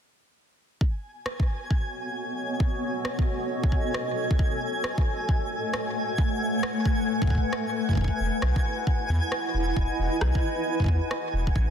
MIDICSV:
0, 0, Header, 1, 5, 480
1, 0, Start_track
1, 0, Tempo, 447761
1, 868, Time_signature, 4, 2, 24, 8
1, 12545, End_track
2, 0, Start_track
2, 0, Title_t, "Synth texture"
2, 0, Program_c, 0, 99
2, 868, Note_on_c, 0, 80, 84
2, 12545, Note_off_c, 0, 80, 0
2, 12545, End_track
3, 0, Start_track
3, 0, Title_t, "Ambient pad"
3, 0, Program_c, 1, 92
3, 869, Note_on_c, 1, 59, 93
3, 951, Note_on_c, 1, 69, 74
3, 1064, Note_on_c, 1, 66, 89
3, 1219, Note_on_c, 1, 73, 76
3, 1517, Note_on_c, 1, 75, 74
3, 4709, Note_on_c, 1, 57, 85
3, 5077, Note_on_c, 1, 71, 85
3, 5321, Note_off_c, 1, 59, 0
3, 5334, Note_off_c, 1, 75, 0
3, 5344, Note_on_c, 1, 78, 74
3, 5359, Note_off_c, 1, 66, 0
3, 8549, Note_off_c, 1, 57, 0
3, 8549, Note_off_c, 1, 69, 0
3, 8549, Note_on_c, 1, 64, 73
3, 8630, Note_on_c, 1, 75, 80
3, 8897, Note_on_c, 1, 80, 81
3, 9839, Note_off_c, 1, 73, 0
3, 12545, Note_off_c, 1, 64, 0
3, 12545, Note_off_c, 1, 71, 0
3, 12545, Note_off_c, 1, 75, 0
3, 12545, Note_off_c, 1, 78, 0
3, 12545, Note_off_c, 1, 80, 0
3, 12545, End_track
4, 0, Start_track
4, 0, Title_t, "Sub bass"
4, 0, Program_c, 2, 38
4, 8549, Note_on_c, 2, 28, 103
4, 8652, Note_off_c, 2, 28, 0
4, 8789, Note_on_c, 2, 28, 91
4, 8892, Note_off_c, 2, 28, 0
4, 9029, Note_on_c, 2, 35, 92
4, 9132, Note_off_c, 2, 35, 0
4, 9749, Note_on_c, 2, 40, 93
4, 9852, Note_off_c, 2, 40, 0
4, 10229, Note_on_c, 2, 28, 89
4, 10413, Note_off_c, 2, 28, 0
4, 10469, Note_on_c, 2, 28, 99
4, 10572, Note_off_c, 2, 28, 0
4, 10709, Note_on_c, 2, 28, 90
4, 10812, Note_off_c, 2, 28, 0
4, 10949, Note_on_c, 2, 35, 98
4, 11052, Note_off_c, 2, 35, 0
4, 11668, Note_on_c, 2, 40, 94
4, 11772, Note_off_c, 2, 40, 0
4, 12149, Note_on_c, 2, 28, 86
4, 12333, Note_off_c, 2, 28, 0
4, 12388, Note_on_c, 2, 33, 101
4, 12492, Note_off_c, 2, 33, 0
4, 12545, End_track
5, 0, Start_track
5, 0, Title_t, "Drums"
5, 868, Note_on_c, 9, 36, 95
5, 976, Note_off_c, 9, 36, 0
5, 1348, Note_on_c, 9, 37, 118
5, 1456, Note_off_c, 9, 37, 0
5, 1497, Note_on_c, 9, 36, 103
5, 1604, Note_off_c, 9, 36, 0
5, 1828, Note_on_c, 9, 36, 80
5, 1936, Note_off_c, 9, 36, 0
5, 2788, Note_on_c, 9, 36, 105
5, 2896, Note_off_c, 9, 36, 0
5, 3268, Note_on_c, 9, 37, 127
5, 3376, Note_off_c, 9, 37, 0
5, 3417, Note_on_c, 9, 36, 107
5, 3524, Note_off_c, 9, 36, 0
5, 3897, Note_on_c, 9, 36, 108
5, 3988, Note_off_c, 9, 36, 0
5, 3988, Note_on_c, 9, 36, 82
5, 4096, Note_off_c, 9, 36, 0
5, 4228, Note_on_c, 9, 37, 120
5, 4336, Note_off_c, 9, 37, 0
5, 4617, Note_on_c, 9, 36, 99
5, 4709, Note_off_c, 9, 36, 0
5, 4709, Note_on_c, 9, 36, 106
5, 4816, Note_off_c, 9, 36, 0
5, 5189, Note_on_c, 9, 37, 121
5, 5296, Note_off_c, 9, 37, 0
5, 5337, Note_on_c, 9, 36, 110
5, 5445, Note_off_c, 9, 36, 0
5, 5669, Note_on_c, 9, 36, 86
5, 5776, Note_off_c, 9, 36, 0
5, 6149, Note_on_c, 9, 37, 118
5, 6256, Note_off_c, 9, 37, 0
5, 6629, Note_on_c, 9, 36, 105
5, 6736, Note_off_c, 9, 36, 0
5, 7109, Note_on_c, 9, 37, 127
5, 7216, Note_off_c, 9, 37, 0
5, 7349, Note_on_c, 9, 36, 105
5, 7456, Note_off_c, 9, 36, 0
5, 7737, Note_on_c, 9, 36, 106
5, 7749, Note_off_c, 9, 36, 0
5, 7749, Note_on_c, 9, 36, 94
5, 7798, Note_off_c, 9, 36, 0
5, 7798, Note_on_c, 9, 36, 70
5, 7829, Note_off_c, 9, 36, 0
5, 7829, Note_on_c, 9, 36, 76
5, 7878, Note_off_c, 9, 36, 0
5, 7878, Note_on_c, 9, 36, 49
5, 7908, Note_off_c, 9, 36, 0
5, 7908, Note_on_c, 9, 36, 41
5, 8016, Note_off_c, 9, 36, 0
5, 8069, Note_on_c, 9, 37, 113
5, 8176, Note_off_c, 9, 37, 0
5, 8457, Note_on_c, 9, 36, 46
5, 8480, Note_off_c, 9, 36, 0
5, 8480, Note_on_c, 9, 36, 51
5, 8503, Note_off_c, 9, 36, 0
5, 8503, Note_on_c, 9, 36, 56
5, 8526, Note_off_c, 9, 36, 0
5, 8526, Note_on_c, 9, 36, 65
5, 8548, Note_off_c, 9, 36, 0
5, 8548, Note_on_c, 9, 36, 107
5, 8586, Note_off_c, 9, 36, 0
5, 8586, Note_on_c, 9, 36, 84
5, 8623, Note_off_c, 9, 36, 0
5, 8623, Note_on_c, 9, 36, 90
5, 8660, Note_off_c, 9, 36, 0
5, 8660, Note_on_c, 9, 36, 95
5, 8767, Note_off_c, 9, 36, 0
5, 9029, Note_on_c, 9, 37, 120
5, 9136, Note_off_c, 9, 37, 0
5, 9177, Note_on_c, 9, 36, 107
5, 9284, Note_off_c, 9, 36, 0
5, 9509, Note_on_c, 9, 36, 82
5, 9616, Note_off_c, 9, 36, 0
5, 9989, Note_on_c, 9, 37, 121
5, 10096, Note_off_c, 9, 37, 0
5, 10469, Note_on_c, 9, 36, 102
5, 10576, Note_off_c, 9, 36, 0
5, 10948, Note_on_c, 9, 37, 114
5, 11056, Note_off_c, 9, 37, 0
5, 11097, Note_on_c, 9, 36, 101
5, 11204, Note_off_c, 9, 36, 0
5, 11577, Note_on_c, 9, 36, 50
5, 11600, Note_off_c, 9, 36, 0
5, 11600, Note_on_c, 9, 36, 63
5, 11623, Note_off_c, 9, 36, 0
5, 11623, Note_on_c, 9, 36, 73
5, 11646, Note_off_c, 9, 36, 0
5, 11646, Note_on_c, 9, 36, 87
5, 11668, Note_off_c, 9, 36, 0
5, 11668, Note_on_c, 9, 36, 75
5, 11776, Note_off_c, 9, 36, 0
5, 11909, Note_on_c, 9, 37, 106
5, 12016, Note_off_c, 9, 37, 0
5, 12297, Note_on_c, 9, 36, 96
5, 12388, Note_off_c, 9, 36, 0
5, 12388, Note_on_c, 9, 36, 100
5, 12496, Note_off_c, 9, 36, 0
5, 12545, End_track
0, 0, End_of_file